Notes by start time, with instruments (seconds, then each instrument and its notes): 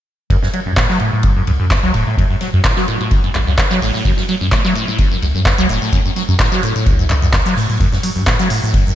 0.30 sub bass F#1, acid bass F#2, kick, ride
0.43 acid bass F#2, snare
0.53 acid bass F#3, ride
0.66 sub bass F#2, acid bass F#2
0.77 acid bass A2, kick, snare, clap, ride
0.89 acid bass F#3, snare
1.00 acid bass A2, ride
1.13 acid bass A2
1.23 acid bass F#2, kick, ride
1.36 acid bass F#2
1.47 sub bass C#2, acid bass F#2, ride
1.60 sub bass F#2, acid bass F#2
1.70 acid bass F#2, kick, snare, clap, ride
1.83 sub bass C#2, acid bass F#3
1.94 sub bass E1, acid bass A2, ride
2.06 acid bass A2
2.18 sub bass F#1, acid bass F#2, kick, ride
2.30 acid bass F#2
2.41 acid bass F#3, snare, ride
2.54 sub bass F#2, acid bass F#2
2.64 acid bass A2, kick, snare, clap, ride
2.76 acid bass F#3, snare
2.88 acid bass A2, ride
3.00 acid bass A2, ride
3.11 acid bass F#2, kick, ride
3.24 acid bass F#2, ride
3.35 sub bass A1, acid bass F#2, clap, ride
3.47 sub bass C#2, acid bass F#2
3.58 acid bass F#2, kick, snare, clap, ride
3.70 acid bass F#3, snare
3.82 sub bass A1, acid bass A2, open hi-hat
3.94 acid bass A2
4.05 sub bass F#1, acid bass F#2, kick, ride
4.17 acid bass F#2, snare
4.29 acid bass F#3, ride
4.41 acid bass F#2, sub bass F#2
4.51 acid bass A2, kick, snare, clap, ride
4.65 acid bass F#3, snare
4.75 acid bass A2, ride
4.88 acid bass A2
4.98 acid bass F#2, kick, ride
5.11 acid bass F#2
5.22 sub bass C#2, acid bass F#2, ride
5.35 sub bass F#2, acid bass F#2
5.46 acid bass F#2, kick, snare, clap, ride
5.58 sub bass C#2, acid bass F#3
5.69 sub bass E1, acid bass A2, ride
5.82 acid bass A2
5.92 sub bass F#1, acid bass F#2, kick, ride
6.05 acid bass F#2
6.16 acid bass F#3, snare, ride
6.29 acid bass F#2, sub bass F#2
6.39 acid bass A2, kick, snare, clap, ride
6.52 acid bass F#3, snare
6.63 acid bass A2, ride
6.75 acid bass A2, ride
6.86 sub bass C#2, acid bass F#2, kick, ride
6.99 acid bass F#2, ride
7.09 acid bass F#2, clap, ride
7.22 acid bass F#2
7.33 acid bass F#2, kick, snare, clap, ride
7.45 acid bass F#3, snare
7.57 acid bass A2, open hi-hat
7.69 acid bass A2
7.80 sub bass F#1, acid bass F#2, kick, ride
7.92 acid bass F#2, snare
8.03 acid bass F#3, open hi-hat, ride
8.16 acid bass F#2, sub bass F#2
8.27 acid bass A2, kick, snare, clap, ride
8.39 acid bass F#3, snare
8.50 acid bass A2, open hi-hat, ride
8.63 acid bass A2
8.74 acid bass F#2, kick, ride
8.86 acid bass F#2